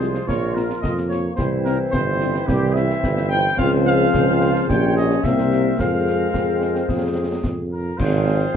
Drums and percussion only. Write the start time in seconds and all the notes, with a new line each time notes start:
0.01 snare
0.15 snare
0.29 concert bass drum, snare
0.57 snare
0.70 snare
0.84 concert bass drum, snare
0.97 snare
1.11 snare
1.38 concert bass drum, snare
1.66 snare
1.93 concert bass drum, snare
2.21 snare
2.34 snare
2.48 concert bass drum, snare
2.76 snare
2.90 snare
3.03 concert bass drum, snare
3.17 snare
3.31 snare
3.59 concert bass drum, snare, crash
3.86 snare
4.14 concert bass drum, snare
4.41 snare
4.55 snare
4.70 concert bass drum, snare
4.97 snare
5.10 snare
5.24 concert bass drum, snare
5.38 snare
5.52 snare
5.79 concert bass drum, snare
6.07 snare
6.34 concert bass drum, snare
6.61 snare
6.75 snare
6.89 concert bass drum, snare
7.44 concert bass drum, snare
8.00 concert bass drum, crash
8.27 snare